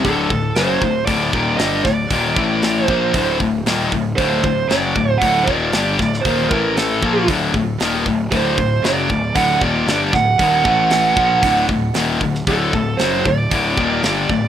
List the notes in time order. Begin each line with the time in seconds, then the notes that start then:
0.04 D1 D2 A2 D3 A4, kick, open hi-hat
0.30 D1 D2 A2, kick
0.55 F#1 F#2 C#3 F#3 C5, snare, open hi-hat
0.82 D1 D2 A2, kick
1.06 D1 D2 A2 D3 D5, kick, open hi-hat
1.33 D#1 D#2 A#2 D#3, kick
1.57 G1 G2 D3 G3 D#5, snare, open hi-hat
1.84 D1 D2 A2 D5, kick, snare
2.10 D#1 D#2 A#2 D#3, kick, open hi-hat
2.36 A1 A2 E3 A3, kick
2.62 snare, open hi-hat
2.85 A#1 A#2 C5, kick
2.90 F3 A#3
3.14 D1 D2 A2 D3, kick, open hi-hat
3.40 D1 D2 A2, kick
3.66 D#1 D#2 A#2 D#3, snare, open hi-hat
3.92 D1 D2 A2, kick
4.17 D1 D2 A2 D3 C5, kick, open hi-hat
4.44 D1 D2 A2, kick
4.69 F#1 F#2 C#3 F#3 D5, snare, open hi-hat
4.96 D1 D2 A2, kick
5.12 C5
5.18 D1 D2 F#5, kick, open hi-hat
5.22 A2 D3
5.44 D#1 D#2 D5, kick
5.48 A#2 D#3
5.73 G1 G2 D3 G3, snare, open hi-hat
5.99 D1 D2 A2, kick, snare
6.13 snare
6.22 D#1 C5, kick
6.26 D#2 A#2 D#3, open hi-hat
6.49 A1 A2 E3 A#4, kick
6.53 A3
6.77 A4, snare, open hi-hat
7.03 A#1 A#2 F3 A#3, kick
7.28 D1 D2 A2 D3, kick, open hi-hat
7.54 D1 D2 A2, kick
7.80 D#1 D#2 A#2 D#3, snare, open hi-hat
8.06 D1 D2 A2, kick
8.32 D1 D2 A2 D3 C5, kick, open hi-hat
8.58 D1 D2 A2, kick
8.84 F#1 F#2 C#3 F#3 D5, snare, open hi-hat
9.10 D1 D2 A2, kick
9.35 D1 D2 A2 D3 F#5, kick, open hi-hat
9.61 D#1 D#2 A#2 D#3 D5, kick
9.87 G1 G2 D3 G3, snare, open hi-hat
10.13 D1 D2 A2 F#5, kick, snare
10.39 D#1 D#2 A#2 D#3, kick, open hi-hat
10.65 A1 A2 E3 A3, kick
10.90 snare, open hi-hat
11.17 A#1 A#2 F3 A#3, kick
11.43 D1 D2 A2 D3, kick, open hi-hat
11.69 D1 D2 A2, kick
11.94 D#1 D#2 A#2 D#3, snare, open hi-hat
12.21 D1 D2 A2, kick
12.35 snare
12.47 D1 D2 A2 D3 A4, kick, open hi-hat
12.73 D1 D2 A2, kick
12.97 F#1 F#2 C#3 F#3 C5, snare, open hi-hat
13.25 D1 D2 A2 D5, kick
13.51 D1 D2 A2 D3, kick, open hi-hat
13.77 D#1 D#2 A#2 D#3, kick
14.03 G1 G2 D3 G3, snare, open hi-hat
14.29 D1 D2 A2, kick